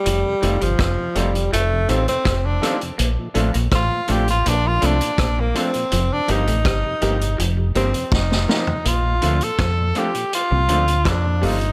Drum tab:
HH |x-xxx-xxx-xxx-xx|x-xxx-xxx-xxx-xx|x-xxx-xxx-xx----|x-xxx-xxx-xxx-ox|
SD |----r-------r-r-|----r-------r---|----r-------ooo-|----r-------r---|
FT |----------------|----------------|---------------o|----------------|
BD |----o-------o---|----o-------o---|----o-------o---|----o-------o---|